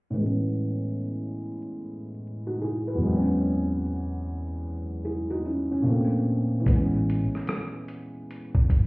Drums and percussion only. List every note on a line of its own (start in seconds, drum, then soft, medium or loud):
6.66 kick medium
6.66 closed hi-hat medium
7.10 closed hi-hat medium
7.35 cross-stick soft
7.47 cross-stick loud
7.47 closed hi-hat medium
7.88 closed hi-hat medium
8.31 closed hi-hat medium
8.55 kick medium
8.70 kick medium
8.70 closed hi-hat medium